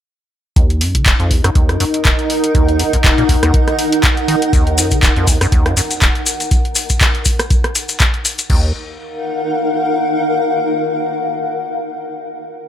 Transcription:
0.56 D#2 D#4, kick, closed hi-hat
0.70 closed hi-hat
0.80 F#2 A#4, open hi-hat
0.95 D#3, kick, closed hi-hat
1.06 D#1, kick, clap, closed hi-hat
1.20 F2, closed hi-hat
1.31 D#2, kick, open hi-hat
1.44 F#2, cross-stick, closed hi-hat
1.55 D#2, kick, closed hi-hat
1.69 F#2 F#5, cross-stick, closed hi-hat
1.80 F#2, open hi-hat
1.94 closed hi-hat
2.05 D#1, kick, clap, closed hi-hat
2.19 closed hi-hat
2.30 open hi-hat
2.44 closed hi-hat
2.55 D#2, kick, closed hi-hat
2.69 closed hi-hat
2.79 F#2, open hi-hat
2.93 F2, kick, closed hi-hat
3.04 D#1, kick, clap, closed hi-hat
3.18 A#2, closed hi-hat
3.29 D#2, kick, open hi-hat
3.43 D#2, cross-stick, closed hi-hat
3.54 kick, closed hi-hat
3.68 cross-stick, closed hi-hat
3.79 open hi-hat
3.92 closed hi-hat
4.03 kick, clap, closed hi-hat
4.17 closed hi-hat
4.28 D#3, open hi-hat
4.42 closed hi-hat
4.53 D#2, kick, closed hi-hat, maracas
4.67 closed hi-hat
4.78 F#2, open hi-hat, maracas
4.91 D#3, kick, closed hi-hat, maracas
5.03 D#1, kick, clap, closed hi-hat, maracas
5.16 F2, closed hi-hat
5.27 D#2, kick, open hi-hat, maracas
5.41 F#2, cross-stick, closed hi-hat, maracas
5.52 D#2, kick, closed hi-hat, maracas
5.66 F#2, cross-stick, closed hi-hat
5.77 F#2, open hi-hat, maracas
5.91 closed hi-hat, maracas
6.01 D#1, kick, clap, closed hi-hat, maracas
6.15 closed hi-hat
6.26 open hi-hat, maracas
6.40 closed hi-hat, maracas
6.51 kick, closed hi-hat, maracas
6.65 closed hi-hat
6.75 open hi-hat, maracas
6.89 kick, closed hi-hat, maracas
7.00 kick, clap, closed hi-hat, maracas
7.15 closed hi-hat
7.25 kick, open hi-hat, maracas
7.39 cross-stick, closed hi-hat, maracas
7.50 kick, closed hi-hat, maracas
7.64 cross-stick, closed hi-hat
7.75 open hi-hat, maracas
7.89 closed hi-hat, maracas
8.00 kick, clap, closed hi-hat, maracas
8.14 closed hi-hat
8.25 open hi-hat, maracas
8.38 closed hi-hat, maracas
8.50 D#2 D#4, kick, crash
8.58 A#4
8.66 F5
8.73 F#5

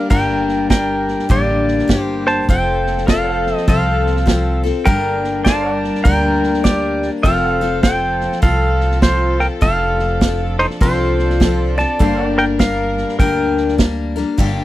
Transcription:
Already playing: G3 A#3 D4 G4 A#4
0.10 G1 G2 D3 G3 A#3 D4 G4 A#4 G5, kick, snare
0.49 snare
0.70 G3 A#3 D4 G4 A#4 G5, kick, snare, hi-hat pedal
1.08 snare
1.19 snare
1.29 A1 G2 D3 G3 A#3 D4 G4 D5, kick, snare
1.68 snare
1.79 snare
1.88 G1 G3 A#3 D4 G4, kick, snare, hi-hat pedal
2.02 C5
2.27 C5 A5, snare
2.49 F1 F3 C4 F4 A4 C5 G5, kick, snare
2.87 snare
2.98 snare
3.07 F3 C4 F4 A4 A#4 D5 F5 G5, kick, snare, hi-hat pedal
3.27 A4
3.33 C5 F5
3.46 snare
3.56 D#5, snare
3.67 C2 F3 C4 F4 A4 F5, kick, snare
4.06 snare
4.17 snare
4.26 F3 C4 F4 A4, kick, snare, hi-hat pedal
4.64 C4 F4 A4, snare
4.85 G1 G2 D3 G3 A#3 D4 A#4 G5, kick, snare
5.24 snare
5.44 G3 A#3 D4 A4 A#4 C5 D5 A5, kick, snare, hi-hat pedal
5.49 F5
5.67 A#4
5.73 D5 G5
5.84 snare
5.95 snare
6.04 D2 G2 D3 G3 A#3 D4 A#4 G5, kick, snare
6.43 snare
6.54 snare
6.64 G3 A#3 D4 G4 A#4 D5, kick, snare, hi-hat pedal
7.02 snare
7.23 F1 F3 C4 F4 A4 A#4 C5 F5 G5, kick, snare
7.43 A4
7.51 F5
7.61 C4 F4 A4, snare
7.83 F3 C4 F4 A4 C5 G5, kick, snare, hi-hat pedal
8.21 snare
8.32 snare
8.42 C2 F3 C4 F4 A4 F5, kick, snare
8.81 snare
8.92 snare
9.02 F3 C4 F4 A4 C5, kick, snare, hi-hat pedal
9.40 A#4 G5, snare
9.61 F1 F3 C4 D4 F4 A4 F5, kick, snare
9.99 snare
10.21 F3 C4 F4 A4, kick, snare, hi-hat pedal
10.59 D#4 C5, snare
10.70 snare
10.81 C2 F3 C4 F4 A4 C5, kick, snare
11.19 snare
11.30 snare
11.40 F3 C4 F4 A4, kick, snare, hi-hat pedal
11.78 C4 F4 A4 D5 A5, snare
11.99 G1 G2 D3 G3 A#3 D4 A4 A#4 C5 F5, kick, snare
12.21 A#4
12.27 D5 G5
12.38 A#4 G5, snare
12.59 G3 A#3 D4 A#4 F5, kick, snare, hi-hat pedal
12.98 snare
13.09 snare
13.19 D2 G2 D3 G3 A#3 D4 A#4 G5, kick, snare
13.57 snare
13.68 snare
13.78 G3 A#3 D4 A#4, kick, snare, hi-hat pedal
14.16 G3 A#3 D4 A#4, snare
14.38 G1 G2 D3 G3 A#3 D4 G4, kick, snare, crash

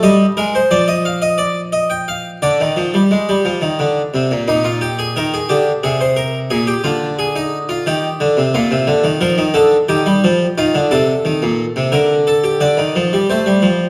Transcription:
0.03 G3 D#5
0.37 G#3 A#4
0.55 C5
0.71 F3 D5
0.88 D#5
1.05 F5
1.22 D#5
1.38 D5
1.73 D#5
1.90 G5
2.08 F5
2.42 D3 D5
2.61 D#3
2.77 F3
2.94 G3
3.11 G#3
3.29 G3
3.45 F3
3.61 D#3
3.79 D3
4.14 C3
4.31 A#2
4.48 A#2 D#4
4.64 F4
4.81 G4
4.99 G#4
5.16 D#3 A#4
5.34 G#4
5.49 D3 G4
5.83 C3 G#4
6.01 C5
6.16 A#4
6.50 A#2 G#4
6.67 G4
6.84 D3 F4
7.19 G#4
7.36 D#4
7.69 F4
7.86 D#3 G4
8.20 D3
8.37 C3
8.54 A#2 F4
8.71 C3
8.87 D3
9.04 D#3
9.21 F3 A#4
9.38 D#3
9.54 D3 A4
9.89 D#3 G4
10.06 G3
10.24 F3
10.58 D#3 F4
10.75 D3
10.91 C3 A4
11.25 D#3
11.42 A#2
11.76 C3
11.92 D3 A#4
12.27 A4
12.44 G4
12.60 D3 D5
12.77 D#3
12.96 F3
13.13 G3
13.30 A3 C5
13.46 G3
13.62 F3

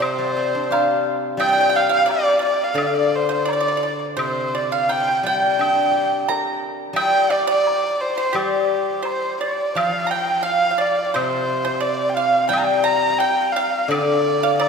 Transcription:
Already playing: G3
0.00 C3 C5, high woodblock
0.18 G3
0.36 C4
0.55 D4
0.71 G4 F5, low woodblock
1.37 G3 G5, high woodblock
1.48 G5
1.53 G5
1.61 G5
1.70 G5
1.75 F5 G5
1.89 F5
1.93 F5
2.06 D5, low woodblock
2.11 D5
2.39 D5
2.45 D5
2.64 F5
2.74 D3 D5, high woodblock
2.82 D5
2.87 F5
2.95 D5
3.16 C5
3.29 C5
3.34 C5
3.45 D5, low woodblock
3.51 D5
3.61 D5
3.68 D5
3.77 D5
3.83 D5
4.17 C3 C5, high woodblock
4.23 C5
4.55 D5
4.72 F5
4.89 G5, low woodblock
5.23 G3 G5
5.59 D4, high woodblock
5.91 G4
6.28 A#4 A#5, low woodblock
6.93 G3 G5, high woodblock
6.98 G5
7.30 D5
7.47 D5
7.67 low woodblock
8.01 C5
8.17 C5
8.33 G3 G4, high woodblock
9.03 C5, low woodblock
9.07 C5
9.41 D5
9.75 F3 F5, high woodblock
10.07 A#5
10.11 G5
10.43 F5
10.71 F5
10.78 D5
11.14 C3 C5, high woodblock
11.65 C5
11.80 D5
12.09 G5
12.15 F5
12.49 G3 G5
12.53 high woodblock
12.59 A#5
12.65 G5
12.84 A#5
13.18 G5
13.52 F5
13.56 F5
13.88 D3 D5, high woodblock
14.43 F5
14.58 D5, high woodblock, low woodblock

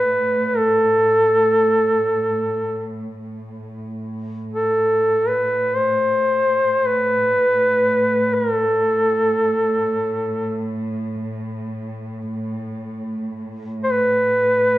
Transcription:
Already playing: A2 B4
0.46 B4
0.57 A4
3.20 A2
4.53 A4
5.28 B4
5.76 C5
6.86 B4
8.34 A#4
8.52 A4
13.84 C5
13.91 B4

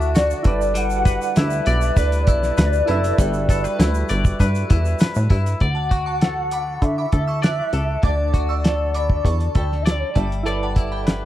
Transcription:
Already playing: D2 D3 A3 D4 E4 F#4 A4 D5 E5
0.01 shaker
0.15 F#4 D5, snare, closed hi-hat, shaker
0.31 shaker
0.43 G1 G3 D4 E4 A4 B4, kick, closed hi-hat
0.47 D5
0.61 shaker
0.74 G3 F#5, closed hi-hat, shaker
0.90 shaker
1.05 B4, kick, closed hi-hat, shaker
1.22 shaker
1.36 D2 E4 E5, snare, closed hi-hat, shaker
1.50 shaker
1.66 B1 D5, closed hi-hat, shaker
1.81 shaker
1.97 D2 B4 D5, kick, closed hi-hat, shaker
2.12 closed hi-hat, shaker
2.27 B1 E4, kick, closed hi-hat, shaker
2.43 snare, shaker
2.58 D2 B4, snare, closed hi-hat, shaker
2.73 shaker
2.86 F#1 E4 F#4 A4 B4, closed hi-hat
2.91 E5
3.04 closed hi-hat, shaker
3.18 G1 G3, kick, closed hi-hat, shaker
3.34 shaker
3.49 A4, kick, closed hi-hat, shaker
3.64 B4, shaker
3.79 D2 E4, snare, closed hi-hat, shaker
3.94 shaker
4.09 G1 D5, closed hi-hat, shaker
4.25 kick, shaker
4.40 G2 B4, kick, closed hi-hat, shaker
4.55 closed hi-hat, shaker
4.70 E2 E4, kick, closed hi-hat, shaker
4.85 shaker
4.99 A2 B4, snare, closed hi-hat, shaker
5.15 A2, shaker
5.30 G2 E4, kick, closed hi-hat
5.46 closed hi-hat, shaker
5.60 D2 D5 F#5, kick, closed hi-hat
5.75 F#5 A5
5.91 F#4, kick, closed hi-hat
6.06 A5 C#6
6.21 A4, snare, closed hi-hat
6.51 B5 D6, closed hi-hat
6.82 D3 E5, kick, closed hi-hat
6.98 B5 D6
7.12 D2 A4, kick, closed hi-hat
7.28 C#6 E6
7.42 D5 D6 F#6, snare, closed hi-hat
7.73 C#2 A4, closed hi-hat
8.03 D2 D3 D5 A5 D6, kick, closed hi-hat
8.34 F#4, kick, closed hi-hat
8.49 C#6 E6
8.64 A4, snare, closed hi-hat
8.94 B5 D6, closed hi-hat
9.10 kick
9.24 E2 A5 C#6, kick, closed hi-hat
9.40 closed hi-hat
9.55 D2 A4 G5 B5, kick, closed hi-hat
9.72 snare
9.82 D5 E5, closed hi-hat
9.87 D5, snare
9.99 C#5
10.10 D5
10.15 G1 G3 E5 A5, kick, closed hi-hat
10.32 closed hi-hat
10.43 G3 E4 A4 B4 D5, closed hi-hat
10.48 D5
10.63 F#5 A5
10.76 E4, kick, closed hi-hat
10.92 G5 B5
11.07 B4, snare, closed hi-hat

